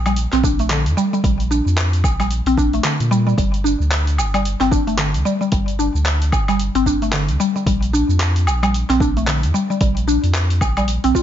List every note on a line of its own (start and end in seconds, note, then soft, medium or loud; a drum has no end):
0.00 0.27 A#1 medium
0.06 0.16 G3 medium
0.06 open hi-hat soft
0.06 low woodblock medium
0.06 shaker soft
0.16 open hi-hat medium
0.16 shaker soft
0.33 0.87 A#1 medium
0.33 0.43 C4 loud
0.33 clap soft
0.33 open hi-hat soft
0.33 shaker soft
0.44 0.53 D4 medium
0.44 kick loud
0.44 shaker medium
0.59 0.69 A3 medium
0.59 open hi-hat soft
0.59 shaker soft
0.70 0.86 D3 medium
0.70 clap loud
0.70 open hi-hat medium
0.70 shaker soft
0.86 0.95 F2 loud
0.86 open hi-hat soft
0.86 shaker soft
0.97 1.11 G3 loud
0.97 shaker medium
1.13 1.23 G3 medium
1.13 shaker soft
1.24 1.61 A#1 loud
1.24 1.50 G3 medium
1.24 kick loud
1.24 open hi-hat medium
1.24 shaker soft
1.40 open hi-hat soft
1.40 shaker soft
1.51 1.60 D4 medium
1.51 shaker medium
1.66 2.06 F2 loud
1.66 shaker soft
1.78 clap loud
1.78 open hi-hat medium
1.78 shaker soft
1.93 open hi-hat soft
1.93 shaker soft
2.04 2.42 A#1 medium
2.04 kick loud
2.04 low woodblock medium
2.04 shaker medium
2.20 2.30 G3 medium
2.20 open hi-hat soft
2.20 low woodblock medium
2.20 shaker soft
2.31 open hi-hat medium
2.31 shaker soft
2.46 2.80 A#1 medium
2.46 2.57 C4 medium
2.46 open hi-hat soft
2.46 shaker soft
2.57 2.67 D4 medium
2.57 kick medium
2.57 shaker medium
2.73 2.84 A3 medium
2.73 open hi-hat soft
2.73 shaker soft
2.84 3.00 D3 medium
2.84 clap medium
2.84 open hi-hat medium
2.84 shaker soft
3.00 3.34 A#2 medium
3.00 open hi-hat soft
3.00 shaker soft
3.11 3.26 G3 loud
3.11 shaker medium
3.27 3.36 G3 medium
3.27 shaker soft
3.38 3.76 G1 loud
3.38 3.64 G3 medium
3.38 kick loud
3.38 open hi-hat medium
3.38 shaker soft
3.54 open hi-hat soft
3.54 shaker soft
3.64 3.74 D4 medium
3.64 shaker medium
3.80 4.19 D2 medium
3.80 shaker soft
3.92 clap loud
3.92 open hi-hat medium
3.92 shaker soft
4.07 open hi-hat soft
4.07 shaker soft
4.18 4.56 G1 medium
4.18 low woodblock medium
4.18 shaker medium
4.34 4.45 G3 medium
4.34 open hi-hat soft
4.34 low woodblock medium
4.34 shaker soft
4.45 open hi-hat medium
4.45 shaker soft
4.60 5.16 G1 medium
4.60 4.71 C4 loud
4.60 clap soft
4.60 open hi-hat soft
4.60 shaker soft
4.71 4.81 D4 medium
4.71 kick loud
4.71 shaker medium
4.87 4.98 A3 medium
4.87 open hi-hat soft
4.87 shaker soft
4.98 5.14 D3 medium
4.98 clap loud
4.98 open hi-hat medium
4.98 shaker soft
5.14 5.23 D2 loud
5.14 open hi-hat soft
5.14 shaker soft
5.25 5.40 G3 loud
5.25 shaker medium
5.41 5.51 G3 medium
5.41 shaker soft
5.52 5.90 G1 loud
5.52 5.78 G3 medium
5.52 kick loud
5.52 open hi-hat medium
5.52 shaker soft
5.68 open hi-hat soft
5.68 shaker soft
5.79 5.88 D4 medium
5.79 shaker medium
5.95 6.34 D2 loud
5.95 shaker soft
6.06 clap loud
6.06 open hi-hat medium
6.06 shaker soft
6.22 open hi-hat soft
6.22 shaker soft
6.32 6.70 G1 loud
6.32 kick loud
6.32 low woodblock medium
6.32 shaker medium
6.48 6.59 G3 medium
6.48 open hi-hat soft
6.48 low woodblock medium
6.48 shaker soft
6.59 open hi-hat medium
6.59 shaker soft
6.75 7.30 G1 loud
6.75 6.86 C4 medium
6.75 open hi-hat soft
6.75 shaker soft
6.86 6.96 D4 medium
6.86 kick medium
6.86 shaker medium
7.02 7.12 A3 medium
7.02 open hi-hat soft
7.02 shaker soft
7.13 7.28 D3 medium
7.13 clap loud
7.13 open hi-hat medium
7.13 shaker soft
7.29 7.38 D2 loud
7.29 open hi-hat soft
7.29 shaker soft
7.40 7.54 G3 loud
7.40 shaker medium
7.56 7.65 G3 medium
7.56 shaker soft
7.66 8.04 A#1 loud
7.66 7.92 G3 medium
7.66 kick loud
7.66 open hi-hat medium
7.66 shaker soft
7.83 open hi-hat soft
7.83 shaker soft
7.93 8.03 D4 medium
7.93 shaker medium
8.09 8.48 F2 loud
8.09 shaker soft
8.20 clap loud
8.20 open hi-hat medium
8.20 shaker soft
8.36 open hi-hat soft
8.36 shaker soft
8.46 8.84 A#1 medium
8.46 low woodblock medium
8.46 shaker medium
8.63 8.73 G3 medium
8.63 open hi-hat soft
8.63 low woodblock medium
8.63 shaker soft
8.74 open hi-hat medium
8.74 shaker soft
8.89 9.45 A#1 loud
8.89 9.00 C4 loud
8.89 clap soft
8.89 open hi-hat soft
8.89 shaker soft
9.00 9.10 D4 medium
9.00 kick loud
9.00 shaker medium
9.17 9.27 A3 medium
9.17 open hi-hat soft
9.17 shaker soft
9.27 9.43 D3 medium
9.27 clap loud
9.27 open hi-hat medium
9.27 shaker soft
9.43 9.52 F2 loud
9.43 open hi-hat soft
9.43 shaker soft
9.54 9.69 G3 loud
9.54 shaker medium
9.70 9.80 G3 medium
9.70 shaker soft
9.81 10.18 A#1 loud
9.81 10.07 G3 medium
9.81 kick loud
9.81 open hi-hat medium
9.81 shaker soft
9.97 open hi-hat soft
9.97 shaker soft
10.08 10.17 D4 medium
10.08 shaker medium
10.23 10.63 F2 loud
10.23 open hi-hat soft
10.23 shaker soft
10.35 clap loud
10.35 open hi-hat medium
10.35 shaker soft
10.50 open hi-hat soft
10.50 shaker soft
10.61 10.99 A#1 medium
10.61 kick loud
10.61 low woodblock medium
10.61 shaker medium
10.77 10.88 G3 medium
10.77 open hi-hat soft
10.77 low woodblock medium
10.77 shaker soft
10.88 open hi-hat medium
10.88 shaker soft
11.04 11.13 A#1 medium
11.04 11.14 C4 medium
11.04 open hi-hat soft
11.04 shaker soft
11.15 11.23 F4 medium
11.15 kick medium
11.15 shaker medium